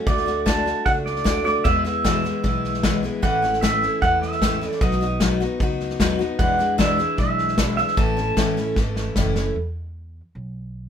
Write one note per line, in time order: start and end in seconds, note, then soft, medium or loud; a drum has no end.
0.07 0.71 D2 medium
0.07 0.27 D3 medium
0.07 0.27 A3 medium
0.07 0.26 D4 medium
0.07 0.25 F#4 medium
0.07 0.48 D5 loud
0.07 kick loud
0.07 snare soft
0.17 snare soft
0.26 0.45 A3 soft
0.26 0.46 D4 medium
0.26 0.46 F#4 medium
0.26 snare soft
0.46 0.66 D3 medium
0.46 0.66 A3 medium
0.46 0.66 D4 medium
0.46 0.65 F#4 medium
0.46 0.85 A5 loud
0.46 kick medium
0.46 snare loud
0.46 hi-hat pedal medium
0.66 0.85 A3 soft
0.66 0.86 D4 soft
0.66 0.86 F#4 soft
0.66 snare soft
0.86 1.20 C#2 medium
0.86 1.24 A3 medium
0.86 1.24 D4 medium
0.86 1.25 F#4 medium
0.86 0.91 F#5 loud
0.86 kick loud
0.86 snare soft
1.06 1.44 D5 medium
1.06 snare soft
1.16 snare soft
1.24 1.59 D2 medium
1.24 1.45 D3 medium
1.24 1.45 A3 medium
1.24 1.44 D4 medium
1.24 1.43 F#4 medium
1.24 kick medium
1.24 snare loud
1.24 hi-hat pedal medium
1.44 1.65 A3 soft
1.44 1.65 D4 soft
1.44 1.64 F#4 soft
1.44 1.66 D5 medium
1.44 snare soft
1.64 1.84 E2 medium
1.64 2.29 E2 medium
1.64 1.85 B2 medium
1.64 1.85 E3 medium
1.64 1.85 G#3 medium
1.64 1.84 B3 medium
1.64 1.83 E4 medium
1.64 1.83 E5 medium
1.64 kick loud
1.64 snare soft
1.84 2.04 E3 soft
1.84 2.04 G#3 soft
1.84 2.05 B3 soft
1.84 2.04 E4 medium
1.84 2.99 E5 medium
1.84 snare soft
2.04 2.24 E2 medium
2.04 2.24 B2 medium
2.04 2.25 E3 medium
2.04 2.25 G#3 medium
2.04 2.24 B3 medium
2.04 2.23 E4 medium
2.04 kick medium
2.04 snare loud
2.04 hi-hat pedal medium
2.24 2.42 E3 soft
2.24 2.43 G#3 soft
2.24 2.44 B3 soft
2.24 2.44 E4 medium
2.24 snare soft
2.43 3.08 B1 medium
2.43 2.83 E3 medium
2.43 2.83 G#3 medium
2.43 2.83 B3 medium
2.43 2.84 E4 medium
2.43 kick loud
2.43 snare soft
2.64 snare soft
2.74 snare soft
2.83 3.03 E2 medium
2.83 3.03 B2 medium
2.83 3.04 E3 medium
2.83 3.03 G#3 medium
2.83 3.03 B3 medium
2.83 3.02 E4 medium
2.83 kick medium
2.83 snare loud
2.83 hi-hat pedal medium
3.03 3.22 E3 soft
3.03 3.23 G#3 soft
3.03 3.23 B3 soft
3.03 3.23 E4 medium
3.03 snare soft
3.22 3.87 A1 medium
3.22 3.43 A2 medium
3.22 3.43 E3 medium
3.22 3.43 A3 medium
3.22 3.42 C#4 medium
3.22 3.41 E4 medium
3.22 3.61 F#5 medium
3.22 kick loud
3.22 snare soft
3.42 3.62 A3 soft
3.42 3.62 C#4 medium
3.42 3.62 E4 medium
3.42 snare soft
3.53 snare soft
3.61 3.82 A2 medium
3.61 3.83 E3 medium
3.61 3.83 A3 medium
3.61 3.82 C#4 medium
3.61 3.81 E4 medium
3.61 3.99 E5 medium
3.61 kick medium
3.61 snare loud
3.61 hi-hat pedal medium
3.82 4.02 A3 soft
3.82 4.02 C#4 soft
3.82 4.02 E4 soft
3.82 snare soft
4.02 4.66 E2 medium
4.02 4.41 E3 medium
4.02 4.41 A3 medium
4.02 4.42 C#4 medium
4.02 4.42 E4 medium
4.02 4.22 F#5 medium
4.02 kick loud
4.02 snare soft
4.22 4.69 E5 medium
4.22 snare soft
4.32 snare soft
4.42 4.62 A2 medium
4.42 4.62 E3 medium
4.42 4.62 A3 medium
4.42 4.62 C#4 medium
4.42 4.60 E4 medium
4.42 kick medium
4.42 snare loud
4.42 hi-hat pedal medium
4.61 4.82 A3 soft
4.61 4.82 C#4 soft
4.61 4.81 E4 medium
4.61 snare soft
4.69 4.83 D5 medium
4.69 snare soft
4.81 5.45 B1 medium
4.81 5.01 B2 medium
4.81 5.01 F#3 medium
4.81 5.01 B3 medium
4.81 5.01 D#4 medium
4.81 5.00 F#4 medium
4.81 5.18 D#5 medium
4.81 kick loud
4.81 snare soft
4.91 snare soft
5.01 5.20 B3 soft
5.01 5.21 D#4 medium
5.01 5.21 F#4 medium
5.01 snare soft
5.20 5.40 B2 medium
5.20 5.41 F#3 medium
5.20 5.41 B3 medium
5.20 5.41 D#4 medium
5.20 5.39 F#4 medium
5.20 kick medium
5.20 snare loud
5.20 hi-hat pedal medium
5.40 5.60 B3 medium
5.40 5.61 D#4 medium
5.40 5.60 F#4 medium
5.40 snare soft
5.60 5.94 C#2 medium
5.60 5.99 F#3 medium
5.60 6.00 B3 medium
5.60 6.00 D#4 medium
5.60 6.01 F#4 medium
5.60 kick loud
5.60 snare soft
5.80 snare soft
5.90 snare soft
6.00 6.34 D#2 medium
6.00 6.20 B2 medium
6.00 6.20 F#3 medium
6.00 6.20 B3 medium
6.00 6.19 D#4 medium
6.00 6.18 F#4 medium
6.00 kick medium
6.00 snare loud
6.00 hi-hat pedal medium
6.19 6.40 B3 soft
6.19 6.40 D#4 medium
6.19 6.39 F#4 medium
6.19 snare soft
6.39 6.59 E2 medium
6.39 7.03 E2 medium
6.39 6.59 B2 medium
6.39 6.59 E3 medium
6.39 6.59 G#3 medium
6.39 6.58 D4 medium
6.39 6.57 E4 medium
6.39 6.78 F#5 medium
6.39 kick loud
6.39 snare soft
6.59 6.78 E3 soft
6.59 6.78 G#3 medium
6.59 6.78 D4 medium
6.59 6.78 E4 medium
6.59 snare soft
6.78 6.98 E2 medium
6.78 6.98 B2 medium
6.78 6.99 E3 medium
6.78 6.99 G#3 medium
6.78 6.98 D4 medium
6.78 6.97 E4 medium
6.78 7.18 E5 medium
6.78 kick medium
6.78 snare loud
6.78 hi-hat pedal medium
6.98 7.16 E3 soft
6.98 7.17 G#3 medium
6.98 7.18 D4 medium
6.98 7.18 E4 medium
6.98 snare soft
7.18 7.82 B1 medium
7.18 7.58 E3 medium
7.18 7.58 G#3 medium
7.18 7.58 D4 medium
7.18 7.59 E4 medium
7.18 7.76 E5 medium
7.18 kick loud
7.18 snare soft
7.38 snare soft
7.48 snare soft
7.58 7.78 E2 medium
7.58 7.78 B2 medium
7.58 7.78 E3 medium
7.58 7.77 G#3 medium
7.58 7.77 D4 medium
7.58 7.76 E4 medium
7.58 kick medium
7.58 snare loud
7.58 hi-hat pedal medium
7.77 7.96 E3 soft
7.77 7.97 G#3 soft
7.77 7.98 D4 soft
7.77 7.97 E4 soft
7.77 7.98 E5 medium
7.77 snare soft
7.87 snare soft
7.97 8.29 A1 medium
7.97 8.17 A2 medium
7.97 8.17 E3 medium
7.97 8.17 A3 medium
7.97 8.17 C#4 medium
7.97 8.15 E4 medium
7.97 9.12 A5 medium
7.97 kick loud
7.97 snare soft
8.17 8.36 A3 soft
8.17 8.37 C#4 medium
8.17 8.37 E4 medium
8.17 snare soft
8.37 8.71 A1 medium
8.37 8.57 A2 medium
8.37 8.57 E3 medium
8.37 8.57 A3 medium
8.37 8.57 C#4 medium
8.37 8.56 E4 medium
8.37 kick medium
8.37 snare loud
8.37 hi-hat pedal medium
8.57 8.77 A3 medium
8.57 8.77 C#4 medium
8.57 8.77 E4 medium
8.57 snare soft
8.76 9.10 G#1 medium
8.76 9.15 E3 medium
8.76 9.16 A3 medium
8.76 9.16 C#4 medium
8.76 9.17 E4 medium
8.76 kick loud
8.76 snare medium
8.96 snare medium
9.16 9.49 F#1 medium
9.16 9.36 A2 medium
9.16 9.36 E3 medium
9.16 9.36 A3 medium
9.16 9.36 C#4 medium
9.16 9.34 E4 medium
9.16 kick medium
9.16 snare medium
9.16 hi-hat pedal medium
9.35 9.57 A3 soft
9.35 9.56 C#4 soft
9.35 9.56 E4 medium
9.35 snare medium
9.55 10.20 E2 medium
10.35 10.89 B1 medium